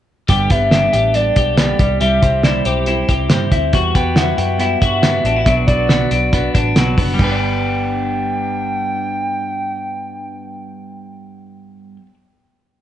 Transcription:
0.28 G1 G2 D3 G3 B3 D4 G4 G5, kick, closed hi-hat
0.50 G1 G3 B3 D4 G4 E5, kick, closed hi-hat
0.71 G2 D3 G3 B3 D4 G4, snare, closed hi-hat
0.92 A1 G3 B3 D4 G4, closed hi-hat
1.14 G3 B3 D4 G4 D5, closed hi-hat
1.36 B1 G4, kick, closed hi-hat
1.57 G2 D3 G3 B3 D4 G4 D5, snare, closed hi-hat
1.79 C2 G3 C4 E4 G4, kick, closed hi-hat
2.00 C2 C3 G3 C4 E4 G4 E5, closed hi-hat
2.21 C2 C4 E4 G4, kick, closed hi-hat
2.43 C3 G3 C4 E4 G4 D5, snare, closed hi-hat
2.65 B1 C4 E4 G4 C5, closed hi-hat
2.86 G3 C4 E4 G4, closed hi-hat
3.09 C2 G4, kick, closed hi-hat
3.29 G2 C3 G3 C4 E4 G4, snare, closed hi-hat
3.51 D2 C4 E4 G4, kick, closed hi-hat
3.73 E2 E3 G3 B3 F#4 G4, kick, closed hi-hat
3.94 E2 B3 F#4 G4 G5, kick, closed hi-hat
4.15 E3 G3 B3 E4 F#4 G4 F#5, snare, closed hi-hat
4.37 F#2 B3 F#4 G4 G5, closed hi-hat
4.58 G3 B3 E4 F#4 G4, closed hi-hat
4.80 G2 F#4 E5, kick, closed hi-hat
5.02 E3 G3 B3 F#4 G4, snare, closed hi-hat
5.23 A1 B3 D4 F#4 G4, closed hi-hat
5.37 E4
5.44 B1 B2 F#3 B3 D4 F#4 B4 E5, kick, closed hi-hat
5.67 B1 F#3 B3 D4 F#4 B4 D5, kick, closed hi-hat
5.89 B2 F#3 B3 D4 F#4 B4, snare, closed hi-hat
6.10 B1 B3 D4 F#4 B4, closed hi-hat
6.32 B3 D4 F#4 B4, kick, closed hi-hat
6.54 A1 D4, kick, closed hi-hat
6.76 B1 B2 F#3 B3 D4 F#4 B4, snare, closed hi-hat
6.97 F#1 B3 D4 F#4 B4, kick, open hi-hat
7.14 G2 G3
7.19 G1 G3 B3 G5, kick, crash
7.24 D4 G4
7.29 D4 B4

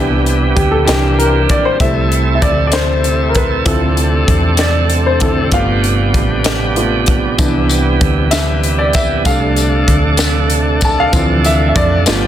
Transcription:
Already playing: C2 C3 E3 G3 B3 D4 G4
0.26 closed hi-hat
0.56 D2 G4, kick, closed hi-hat
0.71 A4
0.84 C2 E3 G3 A#3 C4 D4 G4, closed hi-hat
0.89 snare
1.19 A#4, closed hi-hat
1.49 D5, kick, closed hi-hat
1.65 C5
1.80 C2 C3 G3 A3 C4 E4 A4 E5, kick, closed hi-hat
2.12 closed hi-hat
2.35 E5
2.42 D2 D5, kick, closed hi-hat
2.67 D5
2.72 C5, snare, closed hi-hat
3.04 closed hi-hat
3.29 A#4
3.35 B4, kick, closed hi-hat
3.65 D2 C4 D4 E4 F4 A4, kick, closed hi-hat
3.97 closed hi-hat
4.28 E2, kick, closed hi-hat
4.57 D5, snare, closed hi-hat
4.90 closed hi-hat
5.06 C5
5.20 D3 C4 E4 A4, kick, closed hi-hat
5.52 G1 G3 A3 B3 F4 G4 F5, kick, closed hi-hat
5.84 closed hi-hat
6.14 A1, kick, closed hi-hat
6.44 snare, closed hi-hat
6.76 A3 B3 F4, closed hi-hat
7.06 kick, closed hi-hat
7.38 C2 C3 E3 G3 B3 D4, kick, closed hi-hat, tambourine
7.69 closed hi-hat, tambourine
8.01 D2, kick, closed hi-hat
8.31 E5, snare, closed hi-hat, tambourine
8.64 closed hi-hat
8.79 D5
8.93 E5, kick, closed hi-hat, tambourine
9.25 C2 D3 G3 A3 D4 A4 F5, kick, closed hi-hat, tambourine
9.56 closed hi-hat, tambourine
9.88 D2, kick, closed hi-hat
10.17 snare, closed hi-hat, tambourine
10.50 closed hi-hat
10.81 A5, kick, closed hi-hat, tambourine
11.00 F5
11.12 D2 E3 F3 C4, kick, closed hi-hat, tambourine
11.44 E5, closed hi-hat, tambourine
11.69 E5
11.76 F2 D5, kick, closed hi-hat
12.06 G1 F3 G3 A3 B3 F4 G4, snare, closed hi-hat, tambourine

